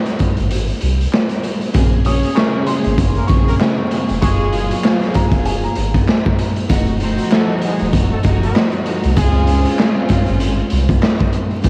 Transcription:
0.06 snare, closed hi-hat
0.19 kick, closed hi-hat
0.37 sub bass G#1, closed hi-hat
0.51 closed hi-hat
0.68 closed hi-hat
0.81 sub bass C2, closed hi-hat
1.01 closed hi-hat
1.13 snare, clap
1.29 closed hi-hat
1.43 closed hi-hat
1.61 closed hi-hat
1.74 sub bass A#1, string section C#3 A#3 C4 G#4, kick, closed hi-hat
2.05 string section C#3 A#3 C#4 G#4, trumpet section C#4 C#5, upright piano D#6, closed hi-hat
2.23 closed hi-hat
2.35 trumpet section A#3 A#4, upright piano C#6, snare, clap
2.66 trumpet section G#3 G#4, upright piano C6, closed hi-hat
2.84 sub bass G#1, closed hi-hat
2.98 kick, closed hi-hat
3.15 trumpet section A#3 A#4, closed hi-hat
3.27 sub bass A#1, string section C#3 A#3 C4, upright piano C#6, kick, closed hi-hat
3.31 string section G#4
3.47 trumpet section A#3 A#4, closed hi-hat
3.60 snare, clap
3.90 string section C#3 A#3 C4 G#4, closed hi-hat
4.08 sub bass F1, closed hi-hat
4.21 sub bass F#1, string section F#3 A#3 F4 G#4, trumpet section G#3 G#4, upright piano C#6, kick, closed hi-hat
4.52 closed hi-hat
4.70 closed hi-hat
4.84 snare, clap
5.01 snare, closed hi-hat
5.14 upright piano A#5, kick, closed hi-hat
5.31 sub bass F1, kick, closed hi-hat
5.45 upright piano G#5, closed hi-hat
5.63 upright piano A#5, closed hi-hat
5.75 sub bass G#1, upright piano A#5, closed hi-hat
5.94 kick, closed hi-hat
6.08 snare, clap
6.26 kick
6.38 closed hi-hat
6.56 closed hi-hat
6.69 sub bass F1, string section F3 A3 D#4 F#4, kick, closed hi-hat
6.87 closed hi-hat
7.00 string section F3 A3 D#4 F#4, trumpet section C4 C5, closed hi-hat
7.18 closed hi-hat
7.31 trumpet section A3 A4, snare, clap
7.62 trumpet section G#3 G#4, closed hi-hat
7.79 sub bass D#1, closed hi-hat
7.93 kick, closed hi-hat
8.11 trumpet section A3 A4
8.22 sub bass F1, string section F3 A3 D#4 F#4, kick, closed hi-hat
8.43 trumpet section A3 A4, closed hi-hat
8.56 snare, clap
8.72 closed hi-hat
8.84 string section F3 A3 D#4 F#4, closed hi-hat
9.04 sub bass C2, closed hi-hat
9.17 sub bass C#2, trumpet section G#3 G#4, string section G#3 C4 C#4 F4, kick, closed hi-hat
9.34 closed hi-hat
9.47 closed hi-hat
9.65 closed hi-hat
9.79 snare, clap
10.09 kick, closed hi-hat
10.26 sub bass G#1, closed hi-hat
10.40 closed hi-hat
10.70 sub bass C2, closed hi-hat
10.89 kick, closed hi-hat
11.03 snare, clap
11.19 kick, closed hi-hat
11.33 closed hi-hat
11.51 closed hi-hat
11.64 sub bass A#1, string section C#3 A#3 C4 G#4, kick, closed hi-hat

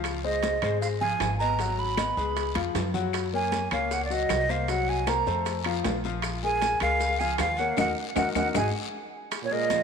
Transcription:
Already playing: upright bass C#2, grand piano F3 F4 F5
0.04 high bongo, high conga, high timbale, long guiro, claves, maracas
0.24 grand piano G#3 G#4 C5, flute D#5, high bongo, high conga
0.43 high bongo, high conga, high timbale, low timbale, short guiro, maracas
0.62 upright bass G#1, grand piano G#3 G#4 C5, high bongo, high conga, high timbale, short guiro, claves, maracas
0.81 flute F5, high bongo, high conga, long guiro, maracas
1.01 grand piano F3 F4 F5, flute G#5, high conga
1.20 upright bass G#1, high bongo, low bongo, high conga, high timbale, low timbale, short guiro, claves, maracas
1.39 grand piano B3 B4 D#5, flute A#5, high bongo, high conga, short guiro, maracas
1.59 grand piano F#3 F#4 F#5, high bongo, high conga, high timbale, long guiro, maracas
1.78 flute B5, high bongo, high conga
1.97 grand piano B3 B4 D#5, high bongo, high conga, high timbale, low timbale, short guiro, claves, maracas
2.17 upright bass C#2, grand piano G#3 G#4 B4, high bongo, high conga, short guiro, maracas
2.36 high bongo, high conga, high timbale, long guiro, maracas
2.55 upright bass F2, grand piano F3 F4 F5, high conga, high timbale, claves
2.75 upright bass F#2, high bongo, low bongo, high timbale, low timbale, short guiro, maracas
2.94 grand piano F#3 F#4 F#5, high bongo, low conga, short guiro, maracas
3.13 high bongo, high conga, high timbale, long guiro, claves, maracas
3.33 grand piano A#3 A#4 C#5, flute G#5, high bongo, high conga
3.52 high bongo, high conga, high timbale, low timbale, short guiro, maracas
3.71 upright bass C#2, grand piano A#3 A#4 C#5, flute F5, high bongo, high conga, high timbale, short guiro, claves, maracas
3.91 flute F#5, high bongo, high conga, long guiro, maracas
4.05 flute D5
4.10 grand piano F#3 F#4 F#5, flute D#5, high conga, maracas
4.29 upright bass C2, high bongo, low bongo, high conga, high timbale, low timbale, short guiro, claves, maracas
4.49 grand piano A#3 A#4 C5, flute F5, high bongo, high conga, short guiro, maracas
4.68 grand piano F#3 F#4 F#5, flute F#5, high bongo, high conga, high timbale, long guiro, maracas
4.88 flute G#5, high bongo, high conga
5.07 grand piano A#3 A#4 C5, flute A#5, high bongo, high conga, high timbale, low timbale, short guiro, claves, maracas
5.27 upright bass F2, grand piano A3 A4 C5, high bongo, high conga, short guiro, maracas
5.46 high bongo, high conga, high timbale, long guiro, maracas
5.64 grand piano F3 F4 F5, high conga, high timbale, claves
5.84 upright bass A#1, high bongo, low bongo, high conga, high timbale, low timbale, short guiro, maracas
6.04 grand piano F3 F4 F5, high bongo, high conga, short guiro, maracas
6.22 high bongo, high conga, high timbale, long guiro, claves, maracas
6.43 grand piano G#3 G#4 A#4, flute G#5, high bongo, high conga
6.61 high bongo, high conga, high timbale, low timbale, short guiro, maracas
6.80 upright bass C#2, grand piano G#3 G#4 A#4, flute F5, high bongo, high conga, high timbale, short guiro, claves, maracas
7.00 high bongo, high conga, long guiro, maracas
7.19 grand piano F3 F4 F5, flute G#5, high conga, maracas
7.38 upright bass D#2, flute F5, high bongo, low bongo, high conga, high timbale, low timbale, short guiro, claves, maracas
7.57 grand piano A#3 A#4 C#5, flute F#5, high bongo, high conga, short guiro, maracas
7.77 upright bass D#2, grand piano D#4 F#4 A#4, flute F#5, low bongo, high conga, high timbale, long guiro, claves, maracas
8.16 upright bass D#2, grand piano D#4 F#4 A#4, flute F#5, low bongo, high conga, high timbale, long guiro, claves, maracas
8.35 upright bass D#2, grand piano D#4 F#4 A#4, flute F#5, low bongo, high conga, high timbale, long guiro, claves, maracas
8.54 upright bass G#1, grand piano D#4 F#4 G#4, flute G#5, low bongo, high conga, high timbale, long guiro, claves, maracas
9.31 high bongo, high conga, high timbale, long guiro, claves, maracas
9.43 trombone A#2, flute C#5
9.51 trombone A#2, grand piano G#3 G#4 A#4, flute D#5, high bongo, high conga
9.70 grand piano F3 F4 F5, high bongo, high conga, high timbale, low timbale, short guiro, maracas

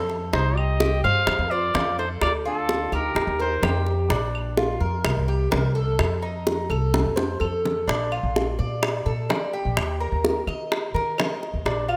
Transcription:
Already playing: upright bass F2, cuban tres A4
0.09 high bongo
0.33 upright bass C2, nylon-string guitar D#4, cuban tres D#4, trumpet C5, high bongo
0.57 nylon-string guitar G4, trumpet D#5, claves
0.80 cuban tres G4, high bongo
1.04 upright bass G2, nylon-string guitar C5, cuban tres F5, trumpet F5
1.27 upright bass F2, high bongo, claves
1.39 upright bass F2
1.51 nylon-string guitar F4, cuban tres C5, trumpet D5
1.74 upright bass F2, cuban tres F5, high bongo, low bongo
1.98 nylon-string guitar D#4, cuban tres A4, trumpet C5
2.21 upright bass D2, nylon-string guitar F4, trumpet D5, high bongo, claves
2.45 nylon-string guitar D4, cuban tres F4, trumpet A4
2.69 high bongo
2.92 upright bass D2, nylon-string guitar D#4, cuban tres G4, trumpet A#4, high bongo, claves
3.15 upright bass D#2, high bongo
3.27 upright bass D#2
3.39 nylon-string guitar D#4, cuban tres A#4, trumpet C5, high bongo
3.62 upright bass F2, cuban tres G4, high bongo, low bongo, claves
3.86 high bongo
4.10 upright bass A#1, cuban tres D4, high bongo
4.35 claves
4.57 cuban tres F4, high bongo
4.80 upright bass F2, cuban tres A#4
5.05 upright bass C2, high bongo, claves
5.17 upright bass C2
5.28 cuban tres G4
5.51 upright bass C2, cuban tres A#4, high bongo, low bongo
5.75 cuban tres A4
5.99 upright bass F2, high bongo, claves
6.22 cuban tres D#4
6.47 high bongo
6.70 upright bass C2, cuban tres A4, high bongo, claves
6.94 high bongo
7.05 upright bass F2
7.16 cuban tres C5, high bongo
7.40 upright bass F2, cuban tres A4, claves
7.65 low bongo
7.88 upright bass A#1, cuban tres D4, high bongo
8.12 cuban tres F4, claves
8.23 upright bass A#1
8.36 high bongo
8.59 upright bass A#2, cuban tres D5
8.83 high bongo, claves
9.06 upright bass A#2, cuban tres A4
9.29 cuban tres D5, high bongo, low bongo
9.53 cuban tres G4
9.65 upright bass A#1
9.77 upright bass D#2, high bongo, claves
10.00 cuban tres A#4
10.12 upright bass D#2
10.24 high bongo
10.47 upright bass D#3, cuban tres D#5, high bongo, claves
10.72 high bongo
10.94 upright bass D#3, cuban tres A#4, high bongo
11.18 cuban tres D#5, high bongo, low bongo, claves
11.43 high bongo
11.54 upright bass D#2
11.65 upright bass A#1, cuban tres D4, high bongo
11.88 cuban tres F4, claves

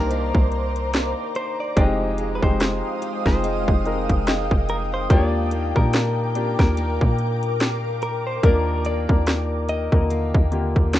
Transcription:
Already playing: 808-style bass C2, steel-string acoustic guitar C3 D#3 D4 G4, grand piano A#3 D4 D#4 G4, clean electric guitar A#4, ambient pad C5 A#5 D6
0.10 steel-string acoustic guitar D#3 A#3 D4, closed hi-hat
0.35 808-style bass C2, kick
0.52 closed hi-hat
0.76 closed hi-hat
0.93 steel-string acoustic guitar D#3 A#3 D4, snare, closed hi-hat
1.35 clean electric guitar C5, closed hi-hat
1.60 clean electric guitar D5
1.76 808-style bass F1, steel-string acoustic guitar F3, grand piano G#3 C4 D#4 G4, ambient pad G#3 F5 G5 D#6, clean electric guitar D#5, kick, closed hi-hat
2.18 steel-string acoustic guitar G#3, closed hi-hat
2.35 clean electric guitar B4
2.42 808-style bass F1, grand piano G#3 C4 D#4 G4, clean electric guitar C5, kick
2.60 steel-string acoustic guitar D#4, snare, closed hi-hat
3.02 steel-string acoustic guitar G4, closed hi-hat
3.26 808-style bass F1, grand piano G#3 C4 D#4 F4, clean electric guitar C5, kick, snare
3.43 steel-string acoustic guitar G#3 D#4 G4, closed hi-hat
3.68 808-style bass F1, kick
3.85 grand piano G#3 C4 D#4 A#4, closed hi-hat
4.09 808-style bass F1, kick, closed hi-hat
4.27 steel-string acoustic guitar G#3 D#4 G4, snare, closed hi-hat
4.51 808-style bass F1, kick
4.69 clean electric guitar A#4, closed hi-hat
4.94 clean electric guitar C5
5.10 808-style bass D#2, steel-string acoustic guitar D#3, grand piano A#3 D4 F4 G4, ambient pad A#4 D6, clean electric guitar C#5, kick, closed hi-hat
5.28 clean electric guitar D5
5.51 steel-string acoustic guitar A#3, closed hi-hat
5.75 808-style bass A#2, grand piano A#3 D4 F4 G4, clean electric guitar A#4, kick
5.93 steel-string acoustic guitar D4, snare, closed hi-hat
6.35 grand piano A#3 D4 F4 G4, steel-string acoustic guitar G4, closed hi-hat
6.59 808-style bass D#2, grand piano A#3 D4 F4 A#4, clean electric guitar A#4, kick, snare
6.77 steel-string acoustic guitar A#3 D4 G4, closed hi-hat
7.01 808-style bass A#2, kick
7.19 closed hi-hat
7.43 closed hi-hat
7.60 steel-string acoustic guitar A#3 D4 G4, snare, closed hi-hat
8.02 clean electric guitar A#4, closed hi-hat
8.27 clean electric guitar C5
8.43 808-style bass D#2, steel-string acoustic guitar D#3, grand piano A#3 D4 F4 A#4, clean electric guitar A#4, kick, closed hi-hat
8.85 steel-string acoustic guitar A#3, clean electric guitar D5, closed hi-hat
9.09 808-style bass D#2, grand piano A#3 D4 F4 A#4, kick
9.27 snare, closed hi-hat
9.68 steel-string acoustic guitar G4, clean electric guitar D#5, closed hi-hat
9.92 808-style bass D#2, grand piano D3 A#3 F4 A#4, kick
10.10 steel-string acoustic guitar A#3 G4, closed hi-hat
10.35 808-style bass D#2, kick
10.51 grand piano D3 A#3 F4 G4, closed hi-hat
10.76 808-style bass D#2, kick
10.93 steel-string acoustic guitar A#3 G4, snare, closed hi-hat

